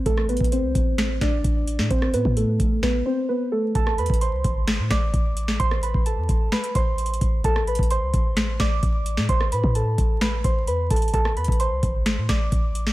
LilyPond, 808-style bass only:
\new Staff \with { instrumentName = "808-style bass" } { \clef bass \time 4/4 \key a \minor \tempo 4 = 130 a,,8. a,,8 c,16 a,,4 a,,8 a,,8. a,16 | a,,8 a,16 a,8. a,,8 r2 | a,,8 e,16 a,,8 c,16 gis,,8. a,16 a,,8 a,,4 | a,,8. a,,8 e,16 a,,8 r8 a,,4 a,,8 |
a,,8. a,,8 c,16 a,,4 a,,8 a,,8. a,16 | a,,8 a,16 a,8. a,,4 a,,8 e,8 a,,8 | a,,8 e,16 a,,8 c,16 gis,,8. a,16 a,,8 a,,4 | }